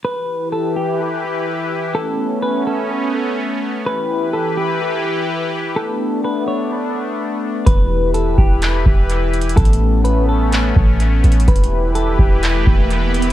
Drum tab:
HH |------------------------|------------------------|------------------------|------------------------|
CP |------------------------|------------------------|------------------------|------------------------|
BD |------------------------|------------------------|------------------------|------------------------|

HH |x-----x-----x-----x--xxx|xxx---x-----x-----x--xxx|xxx---x-----x-----x--xx-|
CP |------------x-----------|------------x-----------|------------x-----------|
BD |o--------o-----o--------|o--------------o--------|o--------o-----o--------|